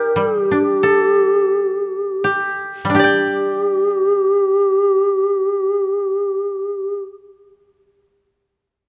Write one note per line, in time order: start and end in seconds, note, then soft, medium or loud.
0.00 0.80 D#4 soft
0.00 1.63 G4 soft
0.00 0.20 A#4 soft
0.16 2.84 G3 soft
0.16 2.24 G4 soft
0.51 2.88 D4 soft
0.83 2.73 A4 soft
2.24 2.95 G4 soft
2.85 6.94 G3 soft
2.90 6.98 D4 soft
2.95 7.03 G4 soft
2.95 7.00 G4 soft
2.95 7.01 G4 soft
2.99 7.04 D5 soft
3.04 7.09 G5 soft